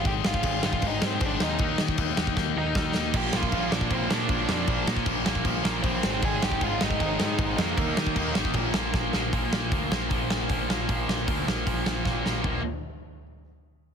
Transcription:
<<
  \new Staff \with { instrumentName = "Lead electric guitar" } { \time 4/4 \key bes \mixolydian \tempo 4 = 155 <g' g''>8 <f' f''>4 <f' f''>8 <ees' ees''>8 <c' c''>8 <d' d''>8 <ees' ees''>8~ | <ees' ees''>8 r2 <ees' ees''>8 <ees' ees''>4 | <g' g''>8 <f' f''>4 <d' d''>8 <c' c''>8 <d' d''>4 <d' d''>8~ | <d' d''>8 r2 <bes bes'>8 <c' c''>4 |
<aes' aes''>8 <g' g''>8 <f' f''>8 <ees' ees''>2 <bes bes'>8~ | <bes bes'>4. r2 r8 | r1 | r1 |
r1 | }
  \new Staff \with { instrumentName = "Distorted electric guitar" } { \clef bass \time 4/4 \key bes \mixolydian <aes, ees aes>8 <aes, ees aes>8 <aes, ees aes>8 <aes, ees aes>8 <aes, ees aes>8 <aes, ees aes>8 <aes, ees aes>8 <aes, ees aes>8 | <ees bes ees'>8 <ees bes ees'>8 <ees bes ees'>8 <ees bes ees'>8 <ees bes ees'>8 <ees bes ees'>8 <ees bes ees'>8 <ees bes ees'>8 | <bes, f bes>8 <bes, f bes>8 <bes, f bes>8 <bes, f bes>8 <bes, f bes>8 <bes, f bes>8 <bes, f bes>8 <bes, f bes>8 | <bes, f bes>8 <bes, f bes>8 <bes, f bes>8 <bes, f bes>8 <bes, f bes>8 <bes, f bes>8 <bes, f bes>8 <aes, ees aes>8 |
<aes, ees aes>8 <aes, ees aes>8 <aes, ees aes>8 <aes, ees aes>8 <aes, ees aes>8 <aes, ees aes>8 <aes, ees aes>8 <aes, ees aes>8 | <ees bes ees'>8 <ees bes ees'>8 <ees bes ees'>8 <ees bes ees'>8 <bes, f bes>8 <bes, f bes>8 <bes, f bes>8 <bes, f bes>8 | <bes, f bes>4 <bes, f bes>8 <bes, f bes>8 <bes, f bes>4 <bes, f bes>8 <bes, f bes>8 | <bes, f bes>4 <bes, f bes>8 <bes, f bes>8 <bes, f bes>4 <bes, f bes>8 <bes, f bes>8 |
<bes, f bes>8 r2. r8 | }
  \new Staff \with { instrumentName = "Distorted electric guitar" } { \clef bass \time 4/4 \key bes \mixolydian r1 | r1 | <bes, f bes>8 <bes, f bes>8 <bes, f bes>8 <bes, f bes>8 <bes, f bes>8 <bes, f bes>8 <bes, f bes>8 <bes, f bes>8 | <bes, f bes>8 <bes, f bes>8 <bes, f bes>8 <bes, f bes>8 <bes, f bes>8 <bes, f bes>8 <bes, f bes>8 <aes, ees aes>8 |
<aes, ees aes>8 <aes, ees aes>8 <aes, ees aes>8 <aes, ees aes>8 <aes, ees aes>8 <aes, ees aes>8 <aes, ees aes>8 <aes, ees aes>8 | <ees bes ees'>8 <ees bes ees'>8 <ees bes ees'>8 <ees bes ees'>8 <bes, f bes>8 <bes, f bes>8 <bes, f bes>8 <bes, f bes>8 | <bes, f bes>4 <bes, f bes>8 <bes, f bes>8 <bes, f bes>4 <bes, f bes>8 <bes, f bes>8 | <bes, f bes>4 <bes, f bes>8 <bes, f bes>8 <bes, f bes>4 <bes, f bes>8 <bes, f bes>8 |
<bes, f bes>8 r2. r8 | }
  \new Staff \with { instrumentName = "Picked electric bass" } { \clef bass \time 4/4 \key bes \mixolydian aes,,8 aes,,8 aes,,8 aes,,8 aes,,8 aes,8 aes,,8 ees,8 | ees,8 ees8 ees,8 ees,8 ees,8 ees,8 ees,8 ees,8 | bes,,8 bes,,8 bes,,8 bes,,8 bes,,8 bes,8 bes,,8 f,8 | bes,,8 bes,8 bes,,8 bes,,8 bes,,8 bes,,8 bes,,8 aes,,8 |
aes,,8 aes,,8 aes,,8 aes,,8 aes,,8 aes,8 aes,,8 f,8 | ees,8 ees8 ees,8 a,,8 bes,,8 bes,,8 bes,,8 bes,,8 | bes,,8 bes,,8 d,8 bes,,8 bes,,4 bes,,8 bes,,8 | bes,,8 bes,,8 d,8 bes,,8 bes,,4 bes,,8 bes,,8 |
bes,,8 r2. r8 | }
  \new DrumStaff \with { instrumentName = "Drums" } \drummode { \time 4/4 <cymc bd>8 sn16 bd16 <cymc bd>8 sn16 bd16 <cymc bd>8 sn8 <cymc bd>8 sn8 | <cymc bd>8 sn16 bd16 <cymc bd>8 sn16 bd16 <bd sn>4 <bd sn>8 sn8 | <cymc bd>8 sn16 bd16 <cymc bd>8 sn16 bd16 <cymc bd>8 sn8 <cymc bd>8 sn8 | <cymc bd>8 sn16 bd16 <cymc bd>8 sn16 bd16 <cymc bd>8 sn8 <cymc bd>8 sn8 |
<cymc bd>8 sn16 bd16 <cymc bd>8 sn16 bd16 <cymc bd>8 sn8 <cymc bd>8 sn8 | <cymc bd>8 sn16 bd16 <cymc bd>8 sn16 bd16 <cymc bd>8 sn8 <bd sn>8 sn8 | <hho bd>8 sn8 <hho bd>8 sn8 <hho bd>8 sn8 <hho bd>8 sn8 | <hho bd>8 sn8 <hho bd>8 sn8 <hho bd>8 sn8 <bd sn>8 sn8 |
<bd tomfh>4 r4 r4 r4 | }
>>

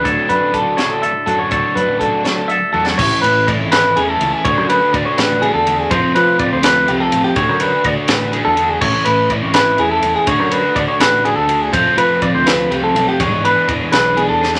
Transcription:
<<
  \new Staff \with { instrumentName = "Clean electric guitar" } { \time 6/8 \key d \lydian \tempo 4. = 82 cis''8 b'8 a'8 cis''16 a'16 e''8 a'16 cis''16 | cis''8 b'8 a'8 cis''16 a'16 e''8 a'16 cis''16 | cis''8 b'8 d''16 cis''16 b'8 gis'16 a'8 gis'16 | cis''8 b'8 d''16 cis''16 b'8 gis'16 a'8 gis'16 |
c''8 b'8 d''16 c''16 b'8 g'16 a'8 g'16 | cis''8 b'8 d''16 cis''16 b'8 gis'16 a'8 gis'16 | cis''8 b'8 d''16 cis''16 b'8 gis'16 a'8 gis'16 | cis''8 b'8 d''16 cis''16 b'8 gis'16 a'8 gis'16 |
c''8 b'8 d''16 c''16 b'8 g'16 a'8 g'16 | cis''8 b'8 d''16 cis''16 b'8 gis'16 a'8 gis'16 | }
  \new Staff \with { instrumentName = "Clean electric guitar" } { \time 6/8 \key d \lydian << { a'2 a'8 fis'8 | a'2 a'8 fis'8 | r2. | r2. |
r2. | r2. | r2. | r2. |
r2. | r2. | } \\ { d,4 d8 a,4. | d,4 d2 | r2. | r2. |
r2. | r2. | r2. | r2. |
r2. | r2. | } >> }
  \new Staff \with { instrumentName = "Overdriven electric guitar" } { \time 6/8 \key d \lydian <fis a d' fis'>8 <fis a d' fis'>8 <fis a d' fis'>8 <fis a d' fis'>8 r8 <fis a d' fis'>8 | <fis a d' fis'>8 <fis a d' fis'>8 <fis a d' fis'>8 <fis a d' fis'>8 r8 <fis a d' fis'>8 | <a, e a cis' e'>8 <a cis' e'>8 <e a cis' e'>8 <a cis' e'>8 <e a cis' e'>8 <a cis' e'>8 | <d a d' fis'>8 <a d' fis'>8 <d a d' fis'>8 <a d' fis'>8 <d a d' fis'>8 <a d' fis'>8 |
<f a c' f'>8 <a c' f'>8 <f a c' f'>8 <a c' f'>8 <f a c' f'>8 <a c' f'>8 | <d a d' fis'>8 <a d' fis'>8 <d a d' fis'>8 <a d' fis'>8 <d a d' fis'>8 <a d' fis'>8 | <a, e a cis' e'>8 <a cis' e'>8 <e a cis' e'>8 <a cis' e'>8 <e a cis' e'>8 <a cis' e'>8 | <d a d' fis'>8 <a d' fis'>8 <d a d' fis'>8 <a d' fis'>8 <d a d' fis'>8 <a d' fis'>8 |
<f a c' f'>8 <a c' f'>8 <f a c' f'>8 <a c' f'>8 <f a c' f'>8 <a c' f'>8 | <e b d' gis'>8 <b d' gis'>8 <e b d' gis'>8 <b d' gis'>8 <e b d' gis'>8 <b d' gis'>8 | }
  \new Staff \with { instrumentName = "Fingered electric bass" } { \clef bass \time 6/8 \key d \lydian d,16 r16 fis,16 a,,8 r4 r16 fis,8 | d,16 r16 fis,16 a,,8 r4 r16 e,8 | a,,16 r16 a,8. gis,,8. e,8 cis,16 r16 | d,16 fis,8 r16 d,16 r16 a,,8. e,8. |
f,16 r16 f8. d,8. c,8 a,,16 r16 | d,16 fis,8 r16 d,16 r16 a,,8. e,8. | a,,16 r16 a,8. gis,,8. e,8 e,16 r16 | d,16 fis,8 r16 d,16 r16 a,,8. d,8. |
f,16 r16 f8. d,8. c,8 b,,16 r16 | e,16 gis,8 r16 e,16 r16 b,,8. e,8. | }
  \new DrumStaff \with { instrumentName = "Drums" } \drummode { \time 6/8 <hh bd>8 hh8 <hh bd>8 <hh sn>8 hh8 hh8 | <hh bd>8 hh8 <hh bd>8 <hh sn>8 hh8 tommh16 sn16 | <cymc bd>8 cymr8 <bd cymr>8 <cymr sn>8 cymr8 cymr8 | <bd cymr>8 cymr8 <bd cymr>8 <cymr sn>8 cymr8 cymr8 |
<bd cymr>8 cymr8 <bd cymr>8 <cymr sn>8 cymr8 cymr8 | <bd cymr>8 cymr8 <bd cymr>8 <cymr sn>8 cymr8 cymr8 | <cymc bd>8 cymr8 <bd cymr>8 <cymr sn>8 cymr8 cymr8 | <bd cymr>8 cymr8 <bd cymr>8 <cymr sn>8 cymr8 cymr8 |
<bd cymr>8 cymr8 <bd cymr>8 <cymr sn>8 cymr8 cymr8 | <bd cymr>8 cymr8 <bd cymr>8 <cymr sn>8 cymr8 sn16 sn16 | }
>>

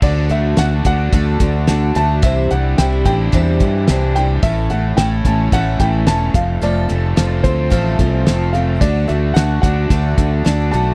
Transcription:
<<
  \new Staff \with { instrumentName = "Grand piano" } { \time 4/4 \key d \major \tempo 4 = 109 d''8 e''8 fis''8 fis''2 a''8 | e''8 fis''8 g''8 g''2 g''8 | e''8 fis''8 g''8 a''8 fis''8 g''8 a''8 f''8 | d''4. c''2 f''8 |
d''8 e''8 fis''8 fis''2 a''8 | }
  \new Staff \with { instrumentName = "Twelve-string acoustic guitar" } { \time 4/4 \key d \major <d a d' fis' a'>8 <d' fis' a'>8 <a d' fis' a'>8 <d' fis' a'>8 <d a d' fis' a'>8 <d' fis' a'>8 <a d' fis' a'>8 <d' fis' a'>8 | <c e g d' e' c''>8 <g d' e' c''>8 <g d' e' c''>8 <g d' e' c''>8 <c e g d' e' c''>8 <g d' e' c''>8 <g d' e' c''>8 <g d' e' c''>8 | <a, e a cis' e' a'>8 <a cis' e' a'>8 <a cis' e' a'>8 <a cis' e' a'>8 <a, e a cis' e' a'>8 <a cis' e' a'>8 <a cis' e' a'>8 <c' f' a'>8 | <f a c' f' a'>8 <c' f' a'>8 <a c' f' a'>8 <c' f' a'>8 <f a c' f' a'>8 <c' f' a'>8 <a c' f' a'>8 <c' f' a'>8 |
<d a d' fis' a'>8 <d' fis' a'>8 <a d' fis' a'>8 <d' fis' a'>8 <d a d' fis' a'>8 <d' fis' a'>8 <a d' fis' a'>8 <d' fis' a'>8 | }
  \new Staff \with { instrumentName = "Overdriven electric guitar" } { \time 4/4 \key d \major d8 a8 fis'8 d'8 a8 d8 d'8 a8 | c8 g8 e'8 d'8 g8 e8 d'8 g8 | a,8 a8 e'8 cis'8 a8 e8 cis'8 f,8 | f,8 a8 f'8 c'8 a8 f8 c'8 a8 |
d8 a8 fis'8 d'8 a8 d8 d'8 a8 | }
  \new Staff \with { instrumentName = "Fingered electric bass" } { \clef bass \time 4/4 \key d \major d,8 d,8 d,8 d,8 d,8 d,8 d,8 d,8 | c,8 c,8 c,8 a,,8 e,8 g,8 c,4 | a,,8 a,,8 a,,8 a,,8 a,,8 a,,8 e,,8 f,,8 | f,,8 f,,8 f,,8 d,8 a,,8 c,8 f,,4 |
d,8 d,8 d,8 d,8 d,8 d,8 d,8 b,,8 | }
  \new DrumStaff \with { instrumentName = "Drums" } \drummode { \time 4/4 <cymc bd>8 hh8 <hh sn>8 <hh bd>8 <hh bd>8 <hh bd>8 <hh sn>8 hh8 | <hh bd>8 hh8 <hh sn>8 <hh bd>8 <hh bd>8 <hh bd>8 <hh sn>8 hh8 | <hh bd>8 hh8 <hh sn>8 <hh bd>8 <hh bd>8 <hh bd>8 <hh sn>8 <hh bd>8 | hh8 hh8 <hh sn>8 <hh bd>8 <hh bd>8 <hh bd>8 <hh sn>8 hh8 |
<hh bd>8 hh8 <hh sn>8 <hh bd>8 <hh bd>8 <hh bd>8 <hh sn>8 hh8 | }
>>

